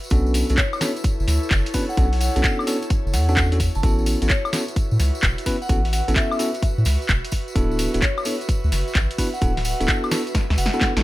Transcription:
Already playing: F#4 B4 E5
0.04 tambourine
0.10 B1 B3 C#4 D4 E4 F#4 A4, kick, closed hi-hat, tambourine
0.26 tambourine
0.34 open hi-hat, tambourine
0.42 A4
0.49 B1 B3 C#4 D4 F#4 A4, closed hi-hat, tambourine
0.58 C#5, kick, clap, closed hi-hat, tambourine
0.73 C#5, tambourine, high woodblock
0.81 B3 C#4 D4 F#4 A4, snare, open hi-hat, tambourine
0.96 closed hi-hat, tambourine
1.04 kick, closed hi-hat, tambourine
1.20 F#1, tambourine
1.28 D2, snare, open hi-hat, tambourine
1.43 tambourine
1.51 F#1, kick, clap, closed hi-hat, tambourine
1.66 closed hi-hat, tambourine
1.74 B3 C#4 D4 F#4 B4, kick, open hi-hat, tambourine
1.89 F#5, tambourine
1.97 B1 B3 C#4 D4 F#4 A4 F#5, kick, closed hi-hat, tambourine
2.13 open hi-hat, tambourine
2.20 F#5, open hi-hat, tambourine
2.36 B1 B3 C#4 D4 F#4 A4 F#5, closed hi-hat, tambourine
2.44 kick, clap, closed hi-hat, tambourine
2.59 tambourine, high woodblock
2.67 B3 C#4 D4 F#4 A4, open hi-hat, tambourine
2.82 closed hi-hat, tambourine
2.90 kick, closed hi-hat, tambourine
3.06 F#1, tambourine
3.13 E2 F#5, snare, open hi-hat, tambourine
3.29 B3 C#4 D4 F#4 A4 F#5, tambourine
3.37 kick, clap, closed hi-hat, tambourine
3.52 B3 C#4 D4 F#4 A4, closed hi-hat, tambourine
3.60 kick, open hi-hat, tambourine
3.75 F#1 A5, tambourine
3.83 A1 B3 C#4 E4 F#4 A4, kick, closed hi-hat, tambourine
3.99 tambourine
4.03 E5, open hi-hat, tambourine
4.22 A1 B3 C#4 E4 F#4 A4 B4, closed hi-hat, tambourine
4.30 C#5, kick, clap, closed hi-hat, tambourine
4.45 tambourine, high woodblock
4.53 B3 C#4 E4 F#4 A4, snare, open hi-hat, tambourine
4.68 closed hi-hat, tambourine
4.76 kick, closed hi-hat, tambourine
4.91 A2, tambourine
5.00 C#2, snare, open hi-hat, tambourine
5.15 tambourine
5.23 E1, kick, clap, closed hi-hat, tambourine
5.38 closed hi-hat, tambourine
5.46 B3 C#4 E4 F#4 B4, kick, open hi-hat, tambourine
5.62 F#5, tambourine
5.69 A1 B3 C#4 E4 F#4 A4 F#5, kick, closed hi-hat, tambourine
5.85 open hi-hat, tambourine
5.93 F#5, open hi-hat, tambourine
6.08 A1 B3 C#4 E4 F#4 A4, closed hi-hat, tambourine
6.16 E5, kick, clap, closed hi-hat, tambourine
6.32 tambourine, high woodblock
6.39 B3 C#4 E4 F#4 A4, open hi-hat, tambourine
6.54 closed hi-hat, tambourine
6.62 kick, closed hi-hat, tambourine
6.78 A2, tambourine
6.85 C#2, snare, open hi-hat, tambourine
7.02 tambourine
7.09 E1, kick, clap, closed hi-hat, tambourine
7.25 closed hi-hat, tambourine
7.32 kick, open hi-hat, tambourine
7.48 tambourine
7.55 D1 B3 D4 E4 F#4 A4, kick, closed hi-hat, tambourine
7.71 tambourine
7.79 open hi-hat, tambourine
7.94 D1 B3 D4 E4 F#4 A4, closed hi-hat, tambourine
8.02 C#5, kick, clap, closed hi-hat, tambourine
8.18 C#5, tambourine, high woodblock
8.25 B3 D4 E4 F#4 A4, open hi-hat, tambourine
8.41 closed hi-hat, tambourine
8.49 kick, closed hi-hat, tambourine
8.64 D2, tambourine
8.72 F#1, snare, open hi-hat, tambourine
8.88 tambourine
8.95 A1, kick, clap, closed hi-hat, tambourine
9.11 closed hi-hat, tambourine
9.18 B3 D4 E4 F#4 B4, kick, open hi-hat, tambourine
9.34 F#5, tambourine
9.41 D1 B3 D4 E4 F#4 A4 F#5, kick, closed hi-hat, tambourine
9.57 snare, open hi-hat, tambourine
9.65 F#5, open hi-hat, tambourine
9.80 D1 B3 D4 E4 F#4 A4 F#5, closed hi-hat, tambourine
9.88 kick, clap, closed hi-hat, tambourine
10.04 tambourine, high woodblock
10.11 B3 D4 E4 F#4 A4, snare, open hi-hat, tambourine
10.27 closed hi-hat, tambourine
10.35 kick, snare, closed hi-hat, tambourine
10.50 D2, snare, tambourine
10.58 F#1 F#5, open hi-hat, tambourine
10.66 snare
10.73 B3 D4 E4 F#4 A4 F#5, tambourine
10.81 kick, snare, clap, closed hi-hat, tambourine
10.96 A1 B3 D4 E4 F#4 A4, snare, closed hi-hat, tambourine

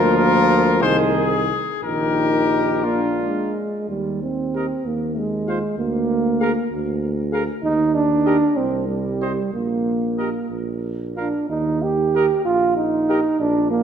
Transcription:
Already playing: D2 F3 A#3 F4 A#4
0.17 A#4
0.81 C2 D#3 D#4 G#4 C5
1.15 G#4
1.82 A#1 D#3 D#4 G4 A#4
2.84 A#3 D4 F4
3.19 G#3
3.89 D#2 G3
4.23 C4
4.55 G4 A#4 D#5
4.85 D#2 A#3
5.17 G#3
5.47 F4 C5 F5
5.77 D2 A#3
6.40 G#4 A#4 F5
6.71 D2
7.32 G#4 A#4 F5
7.63 D#2 D#4
7.94 D4
8.26 G4 A#4 D#5
8.57 C2 C4
8.88 G3
9.22 G4 C5 D#5
9.53 A#1 A#3
10.18 G4 A#4 D#5
10.51 A#1
11.17 D4 F4 A#4 F5
11.49 D#2 D#4
11.83 G4
12.15 G4 A#4 D#5
12.45 A#1 F4
12.77 D#4
13.09 G4 A#4 D#5
13.40 A#1 D4
13.71 A#3

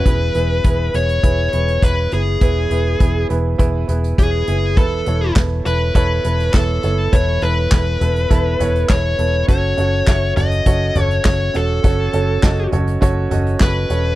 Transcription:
Already playing: B4
0.05 E1 E3 B3 E4 G#4 B4, kick, closed hi-hat
0.34 E1 B3 E4 G#4 B4, closed hi-hat
0.64 E1 B3 E4 G#4 B4, kick, closed hi-hat
0.93 E1 B3 E4 G#4 B4 C#5, closed hi-hat
1.09 closed hi-hat
1.23 E1 B3 E4 G#4 B4, kick, closed hi-hat
1.52 E1 B3 E4 G#4 B4, closed hi-hat
1.68 closed hi-hat
1.82 E1 B3 E4 G#4 B4 C#5, kick, closed hi-hat
2.12 F#1 B3 E4 G#4 B4, closed hi-hat
2.41 E1 E3 B3 E4 G#4 B4, kick, closed hi-hat
2.70 E1 B3 E4 G#4 B4, closed hi-hat
2.99 E1 B3 E4 G#4 B4, kick, closed hi-hat
3.29 E1 B3 E4 G#4 B4, closed hi-hat
3.58 E1 B3 E4 G#4 B4, kick, closed hi-hat
3.88 E1 B3 E4 G#4 B4, closed hi-hat
4.04 closed hi-hat
4.17 E1 B3 E4 G#4 C#5, kick, closed hi-hat
4.47 F#1 B3 E4 G#4 B4, closed hi-hat
4.77 E1 E3 B3 E4 A4 B4, kick, closed hi-hat
5.06 E1 B3 E4 A4 C#5, closed hi-hat
5.35 E1 B3 E4 A4 B4, kick, snare, clap, closed hi-hat
5.65 E1 B3 E4 A4 B4, closed hi-hat
5.94 E1 B3 E4 A4 B4 C#5, kick, closed hi-hat
6.24 E1 B3 E4 A4 B4, closed hi-hat
6.40 closed hi-hat
6.53 E1 B3 E4 A4 B4, kick, snare, clap, closed hi-hat
6.83 F#1 B3 E4 A4 C#5, closed hi-hat
7.12 E1 E3 B3 E4 A4 B4 C#5, kick, closed hi-hat
7.42 E1 B3 E4 A4 B4, closed hi-hat
7.71 E1 B3 E4 A4 B4, kick, snare, clap, closed hi-hat
8.00 E1 B3 E4 A4 B4, closed hi-hat, floor tom
8.16 closed hi-hat
8.30 E1 B3 E4 A4 B4, kick, closed hi-hat
8.59 E1 B3 E4 A4 C#5, closed hi-hat, floor tom
8.76 closed hi-hat
8.89 E1 B3 E4 A4 B4 C#5, kick, snare, clap, closed hi-hat
9.18 E1 B3 E4 A4 B4, closed hi-hat
9.47 F#1 C#4 F#4 A4 C#5, kick, closed hi-hat
9.77 F#1 C#4 F#4 A4 C#5, closed hi-hat
10.07 F#1 C#4 F#4 A4 E5, kick, snare, clap, closed hi-hat
10.36 F#1 C#4 F#4 A4 C#5 D#5, closed hi-hat, floor tom
10.52 closed hi-hat
10.66 F#1 C#4 F#4 A4 C#5, kick, closed hi-hat
10.95 F#1 C#4 F#4 A4 C#5, closed hi-hat, floor tom
11.02 C#5
11.11 closed hi-hat
11.24 F#1 C#4 F#4 A4 C#5, kick, snare, clap, closed hi-hat
11.54 E1 C#4 F#4 A4 C#5, closed hi-hat
11.83 F#1 C#4 F#4 A4 C#5, kick, closed hi-hat
12.13 F#1 C#4 F#4 A4 C#5, closed hi-hat
12.42 F#1 C#4 F#4 A4 D#5, kick, snare, clap, closed hi-hat
12.72 F#1 C#4 F#4 A4 C#5, closed hi-hat, floor tom
12.87 closed hi-hat
13.01 F#1 C#4 F#4 A4 C#5, kick, closed hi-hat
13.31 F#1 C#4 F#4 A4 D#5, closed hi-hat, floor tom
13.47 closed hi-hat
13.60 F#1 C#4 F#4 A4 B4 C#5, kick, snare, clap, closed hi-hat
13.89 E1 C#4 F#4 A4 C#5, closed hi-hat

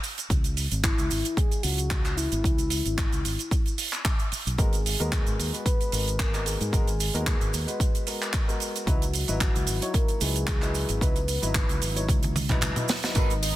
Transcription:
0.04 open hi-hat, cabasa
0.18 closed hi-hat, cabasa
0.30 C#2, kick, closed hi-hat, cabasa
0.44 closed hi-hat, cabasa
0.57 open hi-hat, cabasa
0.71 G#1, closed hi-hat, cabasa
0.83 E4, kick, clap, closed hi-hat, cabasa
0.98 C#2, closed hi-hat, cabasa
1.11 G#1, open hi-hat, cabasa
1.25 closed hi-hat, cabasa
1.37 G#4, kick, closed hi-hat, cabasa
1.52 closed hi-hat, cabasa
1.63 C#2 F#4, open hi-hat, cabasa
1.78 closed hi-hat, cabasa
1.91 kick, clap, closed hi-hat, cabasa
2.05 clap, closed hi-hat, cabasa
2.17 E4, open hi-hat, cabasa
2.32 G#1, closed hi-hat, cabasa
2.44 C#2, kick, closed hi-hat, cabasa
2.58 closed hi-hat, cabasa
2.70 open hi-hat, cabasa
2.86 G#1, closed hi-hat, cabasa
2.98 kick, clap, closed hi-hat, cabasa
3.12 C#2, closed hi-hat, cabasa
3.25 G#1, open hi-hat, cabasa
3.39 closed hi-hat, cabasa
3.51 kick, closed hi-hat, cabasa
3.66 closed hi-hat, cabasa
3.78 open hi-hat, cabasa
3.93 clap, closed hi-hat, cabasa
4.05 kick, clap, closed hi-hat, cabasa
4.19 closed hi-hat, cabasa
4.32 muted fingered electric bass stroke, open hi-hat, cabasa
4.47 B1, closed hi-hat, cabasa
4.58 G#1 G#3 B3 F#4 G#4 A#4, kick, closed hi-hat, cabasa
4.73 closed hi-hat, cabasa
4.86 open hi-hat, cabasa
4.99 D#2 G#3 B3 F#4 A#4, closed hi-hat, cabasa
5.12 kick, clap, closed hi-hat, cabasa
5.27 G#1, closed hi-hat, cabasa
5.39 D#2, open hi-hat, cabasa
5.53 G#3 B3 F#4 B4, closed hi-hat, cabasa
5.65 B4, kick, closed hi-hat, cabasa
5.81 closed hi-hat, cabasa
5.92 G#1 G#3 B3 F#4 A#4, open hi-hat, cabasa
6.08 closed hi-hat, cabasa
6.19 A#4, kick, clap, closed hi-hat, cabasa
6.33 G#3 B3 F#4 A#4, clap, closed hi-hat, cabasa
6.46 G#4, open hi-hat, cabasa
6.61 G#2, closed hi-hat, cabasa
6.72 G#1 G#3 B3 F#4 A#4, kick, closed hi-hat, cabasa
6.87 closed hi-hat, cabasa
7.00 open hi-hat, cabasa
7.14 D#2 G#3 B3 F#4 A#4, closed hi-hat, cabasa
7.26 kick, clap, closed hi-hat, cabasa
7.41 G#1, closed hi-hat, cabasa
7.53 D#2, open hi-hat, cabasa
7.67 G#3 B3 F#4 B4, closed hi-hat, cabasa
7.80 kick, closed hi-hat, cabasa
7.95 closed hi-hat, cabasa
8.07 G#3 B3 F#4 A#4, open hi-hat, cabasa
8.22 clap, closed hi-hat, cabasa
8.33 kick, clap, closed hi-hat, cabasa
8.48 G#3 B3 F#4 A#4, closed hi-hat, cabasa
8.60 open hi-hat, cabasa
8.76 closed hi-hat, cabasa
8.86 C#2 F#3 D#4 E4 F#4 B4, kick, closed hi-hat, cabasa
9.02 closed hi-hat, cabasa
9.14 open hi-hat, cabasa
9.28 G#1 F#3 D#4 E4 B4, closed hi-hat, cabasa
9.41 kick, clap, closed hi-hat, cabasa
9.55 C#2, closed hi-hat, cabasa
9.67 G#1, open hi-hat, cabasa
9.81 F#3 D#4 E4 C#5, closed hi-hat, cabasa
9.94 A#4, kick, closed hi-hat, cabasa
10.08 closed hi-hat, cabasa
10.21 C#2 F#3 D#4 E4 G#4 B4, open hi-hat, cabasa
10.36 closed hi-hat, cabasa
10.47 kick, clap, closed hi-hat, cabasa
10.62 F#3 D#4 E4 B4, clap, closed hi-hat, cabasa
10.75 open hi-hat, cabasa
10.89 G#1, closed hi-hat, cabasa
11.01 C#2 F#3 D#4 E4 B4, kick, closed hi-hat, cabasa
11.16 closed hi-hat, cabasa
11.28 open hi-hat, cabasa
11.42 G#1 F#3 D#4 E4 B4, closed hi-hat, cabasa
11.54 kick, clap, closed hi-hat, cabasa
11.69 C#2, closed hi-hat, cabasa
11.82 G#1, open hi-hat, cabasa
11.95 F#3 D#4 E4 C#5, closed hi-hat, cabasa
12.09 C#2, kick, closed hi-hat, high tom, cabasa
12.23 closed hi-hat, high tom, cabasa
12.36 open hi-hat, high tom, cabasa
12.49 F#3 D#4 E4 B4, kick, clap, closed hi-hat, mid tom, cabasa
12.61 clap, closed hi-hat, mid tom, cabasa
12.76 F#3 D#4 E4 B4, closed hi-hat, mid tom, cabasa
12.89 snare, open hi-hat, cabasa
13.03 F#3 D#4 E4 B4, snare, closed hi-hat, cabasa
13.15 G#1 G#3 B3 D#4 F#4 A#4 B4 D#5, kick, closed hi-hat, tambourine, cabasa
13.30 closed hi-hat, cabasa
13.42 muted clean electric guitar stroke, open hi-hat, tambourine, cabasa

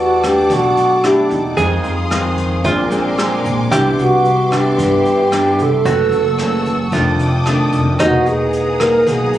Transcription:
Already playing: E2 E3 F#4 G4 A4 D5 F#5 A5 D6
0.23 A3 D4 G4, kick, cross-stick, closed hi-hat
0.50 B1 B2 F#4, kick, closed hi-hat
0.77 closed hi-hat
1.04 A3 D4 E4 G4, cross-stick, closed hi-hat
1.30 E2 D#4, kick, closed hi-hat
1.56 F2 D#3 G#3 C4 G#4 F5 C6 D#6, kick, closed hi-hat
1.83 F2, closed hi-hat
2.10 D#3 G#3 C4, cross-stick, closed hi-hat
2.38 kick, closed hi-hat
2.64 A#1 A#2 G#3 C4 D4 F4 A#4 G#5 C6 D6, kick, closed hi-hat
2.91 G#3 C4 D4, closed hi-hat
3.17 G#3 C4 D4, cross-stick, closed hi-hat
3.45 A#1, kick, closed hi-hat
3.71 C2 C3 E3 B3 D4 E4 G4 E5 C6, kick, cross-stick, closed hi-hat
3.99 C2 F#4 F#5, closed hi-hat
4.25 closed hi-hat
4.51 E3 B3 D4, kick, cross-stick, closed hi-hat
4.56 G4
4.78 G2, kick, closed hi-hat
4.82 G4
5.06 closed hi-hat
5.32 E3 B3 D4, cross-stick, closed hi-hat
5.59 C2 A4, kick, closed hi-hat
5.85 F#1 F#2 E3 A3 C#4 F#4 A4 F#5 C#6 E6, kick, closed hi-hat
6.12 F#1, closed hi-hat
6.39 E3 A3 C#4, cross-stick, closed hi-hat
6.65 kick, closed hi-hat
6.92 F1 F2 D#3 A3 D4 F4 A4 G5 D6 D#6, kick, closed hi-hat
7.19 closed hi-hat
7.46 D#3 A3 D4, cross-stick, closed hi-hat
7.73 F1, kick, closed hi-hat
7.99 E1 E3 A#3 D#4 F#4 G#4 F#5 A#5 D#6, kick, cross-stick, closed hi-hat
8.26 E1 G#4, closed hi-hat
8.53 closed hi-hat
8.80 A#3 D#4 G#4 A#4, kick, cross-stick, closed hi-hat
9.06 B1 B2 G#4, kick, closed hi-hat
9.34 closed hi-hat

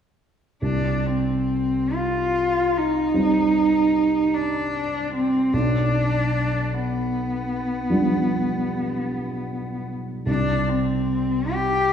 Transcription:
0.62 C2 D4
1.06 C4
1.95 F4
2.77 D#4
3.14 G3 C4
4.34 D4
5.14 C4
5.53 B1 D4
6.74 B3
7.90 F3 G3 D4
10.26 C2 D4
10.69 C4
11.52 G4

